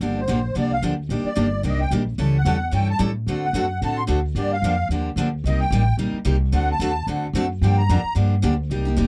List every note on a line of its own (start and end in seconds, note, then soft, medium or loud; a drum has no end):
0.01 0.27 G1 medium
0.01 0.19 D3 medium
0.01 0.19 F3 medium
0.01 0.20 A#3 medium
0.01 0.20 D4 medium
0.01 0.20 G4 medium
0.20 0.55 C5 medium
0.28 0.55 A#1 medium
0.28 0.38 D3 medium
0.28 0.38 F3 medium
0.28 0.39 A#3 medium
0.28 0.39 D4 medium
0.28 0.39 G4 medium
0.55 0.81 C2 medium
0.55 0.73 D3 medium
0.55 0.74 F3 medium
0.55 0.74 A#3 medium
0.55 0.74 D4 medium
0.55 0.74 G4 medium
0.55 0.72 D5 medium
0.73 0.83 F5 loud
0.82 1.09 D2 medium
0.82 0.93 D3 medium
0.82 0.93 F3 medium
0.82 0.93 A#3 medium
0.82 0.93 D4 medium
0.82 0.93 G4 medium
1.09 1.23 A#1 medium
1.09 1.28 D#3 medium
1.09 1.28 G3 medium
1.09 1.28 A#3 medium
1.09 1.29 D4 medium
1.09 1.29 G4 medium
1.24 1.62 D5 medium
1.24 muted upright bass stroke soft
1.35 1.63 G1 medium
1.35 1.46 D#3 medium
1.35 1.46 G3 medium
1.35 1.47 A#3 medium
1.35 1.47 D4 medium
1.35 1.47 G4 medium
1.63 1.90 C2 medium
1.63 1.82 D#3 medium
1.63 1.82 G3 medium
1.63 1.82 A#3 medium
1.63 1.83 D4 medium
1.63 1.82 G4 medium
1.68 1.81 D#5 medium
1.81 1.92 G5 loud
1.91 2.17 A#1 medium
1.91 2.01 D#3 medium
1.91 2.02 G3 medium
1.91 2.02 A#3 medium
1.91 2.02 D4 medium
1.91 2.02 G4 medium
2.18 2.44 C#2 medium
2.18 2.36 E3 medium
2.18 2.37 G3 medium
2.18 2.37 C#4 medium
2.18 2.37 E4 medium
2.18 2.37 A4 medium
2.37 2.72 F#5 medium
2.45 2.72 E2 medium
2.45 2.56 E3 medium
2.45 2.56 G3 medium
2.45 2.56 C#4 medium
2.45 2.56 E4 medium
2.45 2.56 A4 loud
2.71 2.99 G2 medium
2.71 2.90 E3 medium
2.71 2.91 G3 medium
2.71 2.91 C#4 medium
2.71 2.91 E4 medium
2.71 2.91 A4 medium
2.71 2.88 G5 medium
2.91 3.01 A5 loud
2.99 3.26 A2 medium
2.99 3.09 E3 medium
2.99 3.09 G3 medium
2.99 3.10 C#4 medium
2.99 3.10 E4 medium
2.99 3.10 A4 loud
3.27 3.53 D2 medium
3.27 3.45 D3 medium
3.27 3.46 A3 medium
3.27 3.46 C4 medium
3.27 3.46 F#4 medium
3.27 3.46 A4 medium
3.45 3.80 F#5 medium
3.53 3.80 F#2 medium
3.53 3.64 D3 medium
3.53 3.64 A3 medium
3.53 3.65 C4 medium
3.53 3.65 F#4 loud
3.53 3.65 A4 medium
3.82 4.08 A2 medium
3.82 4.00 D3 medium
3.82 4.00 A3 medium
3.82 4.00 C4 medium
3.82 4.00 F#4 medium
3.82 4.01 A4 medium
3.82 3.98 A5 medium
3.96 4.04 C6 medium
4.07 4.34 D2 medium
4.07 4.18 D3 medium
4.07 4.18 A3 medium
4.07 4.18 C4 medium
4.07 4.18 F#4 medium
4.07 4.18 A4 medium
4.35 4.61 G2 medium
4.35 4.54 D3 medium
4.35 4.54 F3 medium
4.35 4.54 A#3 medium
4.35 4.55 D4 medium
4.35 4.55 G4 medium
4.35 4.52 D5 medium
4.52 4.88 F5 medium
4.62 4.88 F2 medium
4.62 4.73 D3 medium
4.62 4.73 F3 medium
4.62 4.74 A#3 medium
4.62 4.74 D4 medium
4.62 4.74 G4 medium
4.89 5.15 D#2 medium
4.89 5.08 D3 medium
4.89 5.09 F3 medium
4.89 5.09 A#3 medium
4.89 5.09 D4 medium
4.89 5.09 G4 medium
5.16 5.43 D2 medium
5.16 5.27 D3 medium
5.16 5.27 F3 medium
5.16 5.28 A#3 medium
5.16 5.28 D4 medium
5.16 5.28 G4 medium
5.44 5.70 C2 medium
5.44 5.63 C3 medium
5.44 5.64 G3 medium
5.44 5.64 A#3 medium
5.44 5.64 D#4 medium
5.44 5.64 G4 medium
5.44 5.60 D#5 medium
5.60 5.96 G5 loud
5.70 5.97 A1 medium
5.70 5.82 C3 medium
5.70 5.82 G3 medium
5.70 5.82 A#3 medium
5.70 5.82 D#4 medium
5.70 5.82 G4 medium
5.97 6.12 A#1 medium
5.97 6.17 C3 medium
5.97 6.17 G3 medium
5.97 6.17 A#3 medium
5.97 6.17 D#4 medium
5.97 6.17 G4 medium
6.13 muted upright bass stroke soft
6.25 6.52 C2 medium
6.25 6.35 C3 medium
6.25 6.36 G3 medium
6.25 6.36 A#3 medium
6.25 6.36 D#4 medium
6.25 6.36 G4 loud
6.52 6.79 D2 medium
6.52 6.71 D3 medium
6.52 6.71 A3 medium
6.52 6.71 C4 medium
6.52 6.71 F#4 medium
6.52 6.71 A4 medium
6.52 6.69 F#5 medium
6.71 7.06 A5 loud
6.79 7.06 D#2 medium
6.79 6.90 D3 medium
6.79 6.91 A3 medium
6.79 6.91 C4 medium
6.79 6.91 F#4 medium
6.79 6.91 A4 medium
7.07 7.33 D2 medium
7.07 7.25 D3 medium
7.07 7.26 A3 medium
7.07 7.26 C4 medium
7.07 7.26 F#4 medium
7.07 7.26 A4 medium
7.33 7.60 F#2 medium
7.33 7.45 D3 medium
7.33 7.45 A3 medium
7.33 7.45 C4 medium
7.33 7.45 F#4 medium
7.33 7.45 A4 loud
7.61 7.88 G2 medium
7.61 7.80 D3 medium
7.61 7.80 F3 medium
7.61 7.81 A#3 medium
7.61 7.81 D4 medium
7.61 7.81 G4 medium
7.61 7.77 G5 medium
7.78 8.14 A#5 medium
7.89 8.03 F2 medium
7.89 7.99 D3 medium
7.89 7.99 F3 medium
7.89 7.99 A#3 medium
7.89 8.00 D4 medium
7.89 8.00 G4 loud
8.04 muted upright bass stroke soft
8.15 8.42 G2 medium
8.15 8.33 D3 medium
8.15 8.34 F3 medium
8.15 8.34 A#3 medium
8.15 8.34 D4 medium
8.15 8.34 G4 medium
8.42 8.69 D2 medium
8.42 8.53 D3 medium
8.42 8.53 F3 medium
8.42 8.53 A#3 medium
8.42 8.53 D4 loud
8.42 8.53 G4 loud
8.70 8.96 C2 medium
8.70 8.85 C3 medium
8.70 8.85 G3 medium
8.70 8.85 A#3 medium
8.70 8.85 D#4 medium
8.70 8.84 G4 medium
8.85 8.96 A#3 soft
8.85 8.97 D#4 soft
8.85 8.97 G4 medium
8.96 9.07 F1 medium
8.96 9.07 C3 medium
8.96 9.07 G3 medium
8.96 9.07 A#3 medium
8.96 9.07 D#4 medium
8.96 9.07 G4 medium